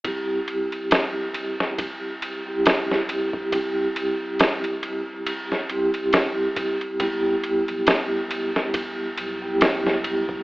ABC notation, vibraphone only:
X:1
M:4/4
L:1/16
Q:"Swing 16ths" 1/4=69
K:Clyd
V:1 name="Vibraphone"
[G,CEG]8- [G,CEG]3 [G,CEG]4- [G,CEG] | [G,CEG]8- [G,CEG]2 [G,CEG]6 | [G,B,EG]8- [G,B,EG]3 [G,B,EG]4- [G,B,EG] |]